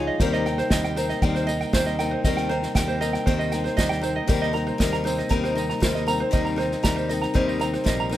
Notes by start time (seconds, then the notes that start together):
Already playing: C#3 F3 G#3 D#4 F4 G#4 C#5 F5
0.00 D#4
0.07 D#5
0.17 D#2 C3 D#3 G3 A#3 C5, kick, snare, tambourine
0.21 G3 C4 D#4 A#4
0.33 D#5, snare
0.46 C4 D#4 A#4 G5, snare
0.58 C5, snare, tambourine
0.70 D#2 G3 C4 D#4 D#5, kick, snare, tambourine
0.75 A#4
0.84 G5, snare, tambourine
0.96 C4 D#4 A#4 C5, snare, tambourine
1.09 D#5, snare, tambourine
1.22 D#2 D#3 G3 C4 D#4 A#4 G5, kick, snare, tambourine
1.35 C5, snare, tambourine
1.47 C4 D#4 A#4 D#5, snare, tambourine
1.60 G5, snare, tambourine
1.73 D#2 G3 C4 D#4 A#4 C5, kick, snare, tambourine
1.86 D#5, snare
1.99 C4 D#4 A#4 G5, snare, tambourine
2.11 C5
2.24 D#2 D#3 G3 C4 D#4 A#4 D#5, kick, snare, tambourine
2.37 G5, snare
2.49 C4 D#4 A#4 C5, snare
2.62 snare, tambourine
2.75 D#2 G3 C4 D#4 A#4 G5, kick, snare, tambourine
2.88 C5, tambourine
3.01 C4 D#4 A#4 D#5, snare, tambourine
3.13 G5, snare, tambourine
3.26 D#2 D#3 G3 C4 D#4 A#4 C5, kick, snare, tambourine
3.39 D#5, tambourine
3.52 C4 D#4 A#4 G5, snare, tambourine
3.64 C5, snare, tambourine
3.77 D#2 G3 C4 D#4 A#4 D#5, kick, snare, tambourine
3.89 G5, snare
4.01 C4 D#4 A#4 C5, snare, tambourine
4.16 D#5
4.26 D#2 C3 D#3 G3 C4 D#4 A#4 C5, kick, snare, tambourine
4.41 D#5, snare
4.53 C4 D#4 A#4 A#5, snare
4.67 C5, tambourine
4.78 D#2 G3 C4 D#4 A#4 D#5, kick, snare, tambourine
4.93 A#5, snare
5.04 C4 D#4 A#4 C5, snare, tambourine
5.18 D#5, snare, tambourine
5.29 D#2 D#3 G3 C4 D#4 A#4 A#5, kick, snare, tambourine
5.43 C5, snare, tambourine
5.55 C4 D#4 A#4 D#5, snare, tambourine
5.70 A#5, snare, tambourine
5.80 D#2 G3 C4 D#4 A#4 C5, kick, snare, tambourine
5.95 D#5, snare, tambourine
6.07 C4 D#4 A#4 A#5, snare, tambourine
6.20 C5
6.31 D#2 D#3 G3 C4 D#4 A#4 D#5, kick, snare, tambourine
6.45 A#5, tambourine
6.56 C4 D#4 A#4 C5, snare, tambourine
6.72 snare, tambourine
6.83 D#2 G3 C4 D#4 A#4 A#5, kick, snare, tambourine
6.96 C5, tambourine
7.09 C4 D#4 A#4 D#5, snare, tambourine
7.22 A#5, snare, tambourine
7.34 D#2 D#3 G3 C4 D#4 A#4 C5, kick, snare, tambourine
7.48 D#5, tambourine
7.60 C4 D#4 A#4 A#5, snare, tambourine
7.73 C5, snare, tambourine
7.84 A#1 G3 C4 D#4 A#4 D#5, kick, snare, tambourine
8.00 A#5, tambourine
8.09 C4 D#4 A#4 C5, snare, tambourine